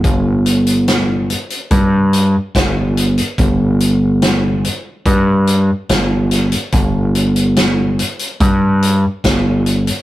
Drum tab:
HH |x-xxx-xxx-x-x-xx|x-x-x-x-x-x-x-xx|x-xxx-xxx-x-x-xx|
SD |----o-------o---|----o-------o-o-|----o-------o---|
BD |o-------o---o---|o-------o-------|o-------o---o---|